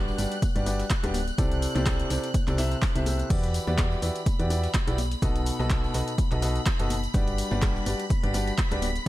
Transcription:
Already playing: G1 G3 D4 F#4 G4 B4 D5 F#6
0.08 tambourine
0.18 G1 G3 D4 F#4 G4 B4 D5, open hi-hat, tambourine, shaker
0.31 closed hi-hat, tambourine
0.42 kick, closed hi-hat, tambourine, high conga, shaker
0.56 G1 G3 D4 F#4 G4 B4 D5, closed hi-hat, tambourine
0.66 G3 D4 F#4 G4 B4 D5, open hi-hat, tambourine, shaker
0.80 snare, closed hi-hat, tambourine
0.90 kick, snare, clap, closed hi-hat, tambourine, shaker
1.03 D1 G3 D4 F#4 G4 B4 D5, cross-stick, closed hi-hat, tambourine
1.14 open hi-hat, tambourine, high conga
1.27 closed hi-hat, tambourine
1.38 C2 C3 E4 G4 A4 C5 D5, kick, closed hi-hat, tambourine, shaker
1.51 closed hi-hat, tambourine
1.62 open hi-hat, tambourine, shaker
1.75 C2 C3 E4 G4 A4 C5 D5, clap, closed hi-hat, tambourine, high conga
1.86 kick, cross-stick, snare, clap, closed hi-hat, tambourine, shaker
1.99 closed hi-hat, tambourine
2.10 C2 C3 E4 G4 A4 C5 D5, snare, open hi-hat, tambourine, shaker
2.24 closed hi-hat, tambourine
2.34 kick, closed hi-hat, tambourine, high conga, shaker
2.47 C2 C3 E4 G4 A4 C5 D5, clap, closed hi-hat, tambourine
2.58 C3 E4 G4 A4 C5 E5, snare, open hi-hat, tambourine, shaker
2.71 closed hi-hat, tambourine
2.82 kick, clap, open hi-hat, tambourine, shaker
2.95 C2 C3 E4 G4 A4 C5 E5, closed hi-hat, tambourine
3.06 cross-stick, open hi-hat, tambourine, high conga, shaker
3.19 closed hi-hat, tambourine
3.30 E2 E3 E4 F#4 G4 B4 D5 B5, kick, closed hi-hat, crash, tambourine, shaker
3.43 closed hi-hat, tambourine
3.54 open hi-hat, tambourine, shaker
3.67 E2 E3 E4 F#4 G4 B4 D5, tambourine, high conga
3.78 kick, cross-stick, snare, clap, closed hi-hat, tambourine, shaker
3.91 tambourine
3.92 tambourine
4.02 E2 E3 E4 F#4 G4 B4 D5, open hi-hat, tambourine, shaker
4.16 closed hi-hat, tambourine
4.26 kick, closed hi-hat, tambourine, high conga, shaker
4.39 E2 E3 E4 F#4 G4 B4 D5, closed hi-hat, tambourine
4.50 E3 E4 F#4 G4 B4 D5, open hi-hat, tambourine, shaker
4.63 snare, closed hi-hat, tambourine
4.74 kick, snare, clap, closed hi-hat, tambourine, shaker
4.87 B1 E4 F#4 G4 B4 D5, cross-stick, closed hi-hat, tambourine
4.98 open hi-hat, tambourine, high conga, shaker
5.11 closed hi-hat, tambourine
5.22 B1 B2 D#4 F#4 A4 B4 D#5, kick, closed hi-hat, tambourine, shaker
5.36 closed hi-hat, tambourine
5.46 open hi-hat, tambourine, shaker
5.59 B1 B2 D#4 F#4 A4 B4 D#5, tambourine, high conga
5.70 kick, snare, clap, closed hi-hat, tambourine, shaker
5.84 tambourine
5.94 B1 B2 D#4 F#4 A4 B4 D#5, snare, open hi-hat, tambourine, shaker
6.08 closed hi-hat, tambourine
6.18 kick, closed hi-hat, tambourine, high conga, shaker
6.31 B1 B2 D#4 F#4 A4 B4 D#5, clap, closed hi-hat, tambourine
6.42 B2 D#4 F#4 A4 B4 D#5, snare, open hi-hat, tambourine, shaker
6.56 closed hi-hat, tambourine
6.66 kick, snare, clap, closed hi-hat, tambourine, shaker
6.79 F#1 B2 D#4 F#4 A4 B4 D#5, closed hi-hat, tambourine
6.90 open hi-hat, tambourine, high conga, shaker
7.04 closed hi-hat, tambourine
7.14 G1 G3 D4 F#4 G4 B4 D5, kick, closed hi-hat, tambourine, shaker
7.27 closed hi-hat, tambourine
7.38 open hi-hat, tambourine, shaker
7.51 G1 G3 D4 F#4 G4 B4 D5, tambourine, high conga
7.62 kick, cross-stick, snare, clap, closed hi-hat, tambourine, shaker
7.75 tambourine
7.86 G1 G3 D4 F#4 G4 B4 D5, open hi-hat, tambourine, shaker
7.99 closed hi-hat, tambourine
8.10 kick, closed hi-hat, tambourine, high conga, shaker
8.23 G1 G3 D4 F#4 G4 B4 D5, closed hi-hat, tambourine
8.34 G3 D4 F#4 G4 B4 D5, open hi-hat, tambourine, shaker
8.47 closed hi-hat, tambourine
8.58 kick, clap, closed hi-hat, tambourine, shaker
8.71 D1 G3 D4 F#4 G4 B4 D5, cross-stick, closed hi-hat, tambourine, shaker
8.82 open hi-hat, tambourine, high conga
8.96 closed hi-hat, tambourine, shaker

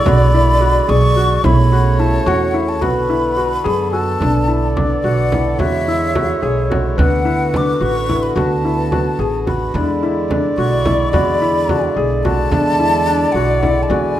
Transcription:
Already playing: D3 G#3 F#4 D5 E6
0.05 B1 F#4 B5, frame drum
0.34 E4
0.61 F#4
0.88 B1 G#4 C#6, frame drum
1.16 F#4, frame drum
1.44 B1 C#3 A3 E4 C#5 B5, frame drum
1.72 F#4
1.99 E4 A5
2.26 E2 F#4 F#5 C#6, frame drum
2.54 E4, frame drum
2.69 A5
2.81 B1 D3 B3 F#4 A4 B4 B5, frame drum
3.10 E4, frame drum
3.37 F#4, frame drum
3.64 F#2 G#4, frame drum
3.91 F#4 A5 E6, frame drum
4.20 B1 D3 B3 D4 A4 D5, frame drum
4.48 E4
4.76 D4 D6, frame drum
5.03 B1 F#4 F#5, frame drum
5.32 E4, frame drum
5.59 E2 G#3 E4 F#4 C#5 E5, frame drum
5.88 E4 E6
6.15 F#4, frame drum
6.42 B1 G#4, frame drum
6.70 F#4, frame drum
6.97 D2 D3 B3 D4 F#4 B4 F#5 F#6, frame drum
7.25 E4
7.54 D4 D6, frame drum
7.80 A1 F#4 C#6, frame drum
8.09 E4, frame drum
8.23 B5
8.36 D2 F#4 A5, frame drum
8.65 E4 A5
8.92 F#4, frame drum
9.19 A1 G#4
9.46 F#4 B5, frame drum
9.74 E2 D3 G#3 D4 E4 D5, frame drum
10.03 E4
10.30 D4, frame drum
10.57 B1 F#4 C#6, frame drum
10.85 E4, frame drum
11.13 E2 F#4 B5, frame drum
11.41 E4
11.69 F#4, frame drum
11.96 B1 G#4, frame drum
12.24 F#4 A5, frame drum
12.51 E2 D4 D5, frame drum
12.80 E4
13.06 D4
13.32 B1 F#4 F#5
13.63 E4, frame drum
13.83 A5
13.89 E2 F#4 G#5, frame drum

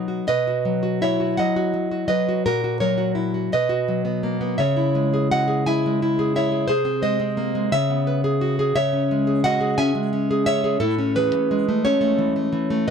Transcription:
Already playing: B2 F#3 B3 D#4
0.08 F#4
0.27 B2 B4 D#5
0.47 F#4
0.65 F#3
0.83 F#4
1.02 E4 C#5 E5
1.20 F#4
1.37 F#3 D#5 F#5
1.56 F#4
1.74 F#3
1.91 F#4
2.08 F#3 B4 D#5
2.29 F#4
2.46 A#2 F#4 A#4
2.64 F#4
2.80 F#3 A#4 C#5
2.98 F#4
3.15 E4
3.34 F#4
3.52 B2 B4 D#5
3.69 F#4
3.88 F#3
4.05 B3
4.23 A#3
4.41 B3
4.58 C#3 C#5 E5
4.77 E4
4.95 G#3
5.13 G#4
5.31 F#4 D#5 F#5
5.48 G#4
5.66 E4 E5 G#5
5.86 G#3
6.02 E4
6.19 G#4
6.36 E4 C#5 E5
6.52 G#4
6.68 C3 G#4 C5
6.85 C4
7.02 G#3 C5 D#5
7.20 C4
7.37 A#3
7.55 G#3
7.72 C#3 C#5 E5
7.90 B3
8.07 B4
8.24 G#4
8.41 F#4
8.59 G#4
8.75 C#3 C#5 E5
8.93 C#4
9.11 G#3
9.27 G#4
9.44 F#4 D#5 F#5
9.60 G#4
9.78 C#4 E5 G#5
9.95 G#3
10.13 C#4
10.31 G#4
10.46 C#4 C#5 E5
10.64 G#4
10.80 A2 E4 A4
10.98 C#4
11.15 E3 G#4 B4
11.34 A3
11.51 G#3
11.69 A3
11.85 C#4 A4 C#5
12.01 A3
12.18 E3
12.36 A3
12.52 E3
12.70 A3

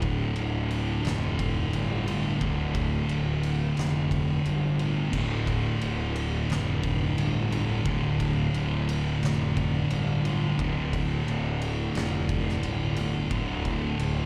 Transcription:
Already playing: D1 D2 A2 D3
0.02 kick, ride
0.36 D1, ride
0.71 ride
1.05 F1, snare, ride
1.39 kick, ride
1.73 G1, ride
2.06 D2 A2 D3, ride
2.40 D1 D2 A2 D3, kick, ride
2.75 kick, ride
3.09 D1, ride
3.43 ride
3.77 F1, snare, ride
4.11 kick, ride
4.45 G1, ride
4.79 D2 A2 D3, ride
5.12 D1 D2 A2 D3, kick, crash
5.47 kick, ride
5.81 D1, ride
6.16 ride
6.49 F1, snare, ride
6.83 kick, ride
7.17 G1, ride
7.51 D2 A2 D3, ride
7.85 D1 D2 A2 D3, kick, ride
8.20 kick, ride
8.54 D1, ride
8.89 ride
9.22 F1, snare, ride
9.57 kick, ride
9.90 G1, ride
10.24 D2 A2 D3, ride
10.59 D1 D2 A2 D3, kick, ride
10.93 kick, ride
11.27 D1, ride
11.62 ride
11.95 F1, snare, ride
12.29 kick, ride
12.49 snare
12.63 G1, ride
12.95 D2 A2 D3, ride
13.29 D1 D2 A2 D3, kick, ride
13.65 kick, ride
13.99 D1, ride

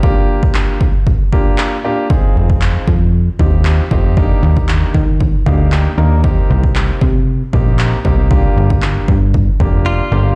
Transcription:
0.03 A#3 D4 F4 G4, kick
0.43 kick
0.55 clap
0.81 kick
1.07 kick
1.32 A#3 D4 F4 G4, kick
1.58 clap
1.84 A#3 D4 F4 G4
2.10 C4 D#4 F4 G#4, kick
2.36 F1
2.50 kick
2.61 clap
2.88 F2, kick
3.39 D#2 C4 D#4 F4 G4, kick
3.65 clap
3.91 F1 C4 D#4 F4 G4, kick
4.17 A#3 D4 D#4 G4, kick
4.43 D#2
4.57 kick
4.69 clap
4.94 D#3, kick
5.21 kick
5.46 D2 A#3 D4 D#4 G4 F5, kick
5.72 G5, clap
5.98 D#2 A#3 D4 D#4 A#4
6.23 A#3 C4 D#4 G4, kick
6.50 C2
6.63 kick
6.75 clap
7.01 C3, kick
7.53 A#1 A#3 C4 D#4 G4, kick
7.79 clap
8.05 C2 A#3 C4 D#4 G4, kick
8.31 A#3 D4 F4 G4, kick
8.57 G1
8.70 kick
8.82 clap
9.08 G2, kick
9.34 kick
9.60 F1 A#3 D4 F4 G4, kick
9.86 F4 D5
10.12 G1 A#3 D4 F4 G4

